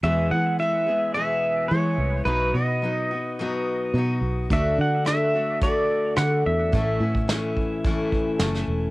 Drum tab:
HH |----------------|----------------|x---x---x---x---|x---x---x---x---|
SD |----------------|----------------|----r-------r---|----o-------oo--|
BD |----------------|----------------|o-------o-------|o--o--o-o-o-----|